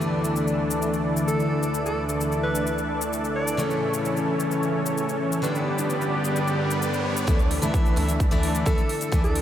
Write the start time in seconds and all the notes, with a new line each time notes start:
Already playing: D2 D3 E3 A3 D4 E4 A4 D5
0.01 shaker
0.24 shaker
0.36 shaker
0.48 shaker
0.71 shaker
0.82 shaker
0.94 shaker
1.17 shaker
1.28 A4, shaker
1.40 shaker
1.63 shaker
1.74 shaker
1.85 A4, shaker
2.09 shaker
2.21 shaker
2.32 shaker
2.43 B4
2.55 shaker
2.67 shaker
2.78 shaker
3.01 shaker
3.13 shaker
3.24 shaker
3.35 D5
3.47 shaker
3.57 A2 C#3 E3 A3 C#4 A4 C#5, riser, shaker
3.71 shaker
3.94 shaker
4.05 shaker
4.17 shaker
4.40 shaker
4.51 shaker
4.63 shaker
4.86 shaker
4.98 shaker
5.09 shaker
5.32 shaker
5.42 G2 D3 G3 B3 D4 G4 B4 D5, shaker
5.55 shaker
5.78 shaker
5.90 shaker
6.01 shaker
6.24 shaker
6.36 shaker
6.48 shaker
6.71 shaker
6.82 shaker
6.94 shaker
7.17 shaker
7.27 D2 D3 E3 A3 D4 E4 A4 D5, kick, closed hi-hat, shaker
7.39 closed hi-hat, shaker
7.51 open hi-hat
7.62 D2 E3 A3 D4 E4 A4 B4, closed hi-hat, shaker
7.74 kick, closed hi-hat, shaker
7.86 closed hi-hat, shaker
7.96 D2 E3 A3 D4 E4 A4 E5, open hi-hat
8.09 closed hi-hat, shaker
8.20 kick, closed hi-hat, shaker
8.31 D2 E3 A3 D4 E4 A4 D5, closed hi-hat, shaker
8.43 open hi-hat
8.55 closed hi-hat, shaker
8.66 D2 E3 A3 D4 E4 A4 E5, kick, closed hi-hat, shaker
8.78 closed hi-hat, shaker
8.89 open hi-hat
9.01 closed hi-hat, shaker
9.12 D2 E3 A3 D4 E4 A4 D5, kick, closed hi-hat, shaker
9.24 A4, closed hi-hat, shaker
9.36 open hi-hat